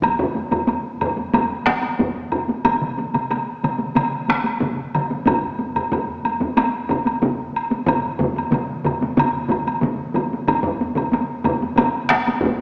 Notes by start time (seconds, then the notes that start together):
0.02 taiko, taiko high, high woodblock
0.19 taiko low-mid
0.35 taiko high
0.51 taiko low-mid, taiko high, high woodblock
0.67 taiko high, high woodblock
1.01 taiko low-mid, high woodblock
1.17 taiko high
1.34 taiko low-mid, taiko high, high woodblock
1.66 taiko rim, taiko, taiko high, high woodblock
1.82 taiko high, high woodblock
1.99 taiko, taiko low-mid, taiko high
2.32 taiko low-mid, high woodblock
2.48 taiko high
2.65 taiko, taiko high, high woodblock
2.82 taiko mid
2.98 taiko high
3.14 taiko mid, taiko high, high woodblock
3.30 taiko high, high woodblock
3.63 taiko mid, taiko high, high woodblock
3.79 taiko high
3.95 taiko mid, taiko high, high woodblock
4.28 taiko rim, taiko, taiko high, high woodblock
4.44 taiko high, high woodblock
4.60 taiko, taiko mid, taiko high
4.95 taiko mid, high woodblock
5.10 taiko high
5.26 taiko, taiko low-mid, taiko high, high woodblock
5.59 taiko high
5.75 taiko low-mid, taiko high, high woodblock
5.92 taiko low-mid, taiko high, high woodblock
6.25 taiko high, high woodblock
6.40 taiko low-mid, taiko high
6.57 taiko high, high woodblock
6.89 taiko, taiko low-mid, taiko high, high woodblock
7.05 taiko high, high woodblock
7.22 taiko, taiko low-mid, taiko high
7.56 high woodblock
7.71 taiko high
7.86 taiko, taiko low-mid, taiko mid, taiko high, high woodblock
8.19 taiko low-mid, taiko mid, taiko high
8.36 taiko high, high woodblock
8.52 taiko low-mid, taiko mid, taiko high, high woodblock
8.84 taiko low-mid, taiko mid, taiko high, high woodblock
9.01 taiko high
9.17 taiko low-mid, taiko mid, taiko high, high woodblock
9.49 taiko, taiko low-mid, taiko mid, taiko high, high woodblock
9.67 taiko high, high woodblock
9.81 taiko, taiko low-mid, taiko mid, taiko high
10.14 taiko low-mid, taiko mid, taiko high, high woodblock
10.33 taiko high
10.47 taiko, taiko high, high woodblock
10.63 taiko low-mid
10.80 taiko high
10.95 taiko low-mid, taiko high, high woodblock
11.12 taiko high, high woodblock
11.44 taiko low-mid, taiko high, high woodblock
11.62 taiko high
11.77 taiko low-mid, taiko high, high woodblock
12.09 taiko rim, taiko, taiko high, high woodblock
12.27 taiko high, high woodblock
12.41 taiko, taiko low-mid, taiko high